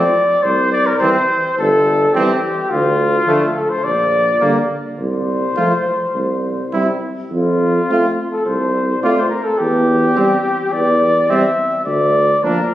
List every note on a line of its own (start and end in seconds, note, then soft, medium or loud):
0.00 0.45 D5 medium
0.43 0.92 C2 medium
0.43 0.71 C5 medium
0.72 0.88 D5 medium
0.86 0.99 A#4 medium
1.00 1.17 E3 medium
1.00 1.17 G3 soft
1.00 1.17 C4 medium
1.00 1.56 C5 loud
1.59 2.05 G1 medium
1.59 2.15 A4 medium
2.14 2.31 E3 medium
2.14 2.31 G3 medium
2.14 2.31 C4 medium
2.14 2.72 G4 medium
2.70 3.18 D2 medium
2.70 3.55 F4 loud
3.26 3.44 D3 medium
3.26 3.42 F3 medium
3.26 3.43 A3 medium
3.56 3.71 A4 medium
3.70 3.85 C5 medium
3.84 4.32 A#1 medium
3.84 4.71 D5 medium
4.41 4.58 D3 soft
4.41 4.57 G3 soft
4.41 4.57 A#3 soft
4.97 5.47 C2 medium
4.97 6.97 C5 medium
5.57 5.74 F3 soft
5.57 5.73 A3 soft
5.57 5.73 F4 soft
6.15 6.63 C2 soft
6.72 6.90 G3 soft
6.72 6.89 C4 soft
6.72 6.88 E4 soft
7.31 7.79 F2 medium
7.31 8.28 F4 medium
7.90 8.06 A3 soft
7.90 8.06 C4 soft
7.90 8.07 F4 soft
8.32 8.45 A4 medium
8.46 8.94 C2 medium
8.46 9.02 C5 medium
9.03 9.20 A3 soft
9.03 9.20 C4 soft
9.03 9.19 F4 soft
9.03 9.17 D5 medium
9.18 9.24 C5 medium
9.29 9.46 A#4 medium
9.44 9.60 A4 medium
9.58 10.07 E2 medium
9.58 10.74 G4 medium
10.16 10.33 G3 medium
10.16 10.32 C4 soft
10.16 10.33 C4 soft
10.72 11.20 E2 medium
10.72 11.32 D5 medium
11.29 11.46 G3 medium
11.29 11.45 C4 soft
11.29 11.46 C4 soft
11.29 11.85 E5 medium
11.86 12.33 D2 medium
11.86 12.46 D5 medium
12.43 12.60 F3 soft
12.43 12.60 A#3 soft
12.43 12.59 D4 soft
12.43 12.74 A#4 medium